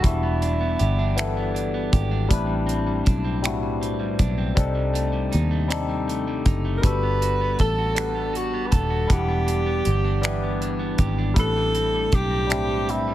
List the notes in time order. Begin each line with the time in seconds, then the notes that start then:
Already playing: B3 F#4 A4
0.02 E1 E3 G3 B3 D4 E4, kick, closed hi-hat
0.07 F#4
0.23 B3
0.42 D4, closed hi-hat
0.61 B3
0.79 G1 G4, closed hi-hat
0.99 D4
1.15 E3 G3 B3 D4 E4, finger snap, closed hi-hat
1.20 A4
1.37 B3
1.55 D4, closed hi-hat
1.74 B3
1.93 G#1 G4, kick, closed hi-hat
2.11 D4
2.29 A1 A2 G3 C4 D4 E4, kick, closed hi-hat
2.33 B4
2.47 G3
2.67 C4, closed hi-hat
2.87 G3
3.05 B1 D4, kick, closed hi-hat
3.25 C4
3.42 A2 G3 C4 D4 E4, finger snap, closed hi-hat
3.47 F#4
3.63 G3
3.81 C4, closed hi-hat
4.00 G3
4.19 B1 D4, kick, closed hi-hat
4.38 C4
4.55 C2 C3 G3 C4 D4 D#4, kick, closed hi-hat
4.60 A4
4.75 G3
4.94 A3, closed hi-hat
5.13 G3
5.32 D#2 D#4, closed hi-hat
5.51 A3
5.68 C3 G3 C4 D#4 D5, closed hi-hat
5.72 A4, finger snap
5.89 G3
6.08 A3, closed hi-hat
6.28 G3
6.46 F#1 D#4, kick, closed hi-hat
6.65 A3
6.78 G3 A#4
6.82 G1 G3 B3 D4 F#4 A4 B4, kick, closed hi-hat
7.03 B3
7.22 F#4, closed hi-hat
7.41 B3
7.59 A1 A4, kick, closed hi-hat
7.78 F#4
7.95 G3 B3 D4 F#4, finger snap, closed hi-hat
8.00 B4
8.15 B3
8.33 F#4, closed hi-hat
8.54 B3
8.67 B4
8.71 D#1 A4, kick, closed hi-hat
8.90 F#4
9.07 E1 E3 G3 B3 D4 E4, kick, closed hi-hat
9.12 G4 F#5
9.28 B3
9.47 D4, closed hi-hat
9.66 B3
9.85 G1 G4, closed hi-hat
10.04 D4
10.21 E3 G3 B3 D4 E4, finger snap, closed hi-hat
10.26 G4
10.43 B3
10.62 D4, closed hi-hat
10.79 B3
10.98 G#1 G4, kick, closed hi-hat
11.18 D4
11.34 A1 A2 G3 C4 D4 E4, kick, closed hi-hat
11.39 A4 B4
11.57 G3
11.75 C4, closed hi-hat
11.94 G3
12.12 B1 D4 G4, kick, closed hi-hat
12.31 C4
12.47 A2 G3 C4 D4 E4, closed hi-hat
12.52 G4, finger snap
12.70 G3
12.87 C4 E4, closed hi-hat
13.08 G3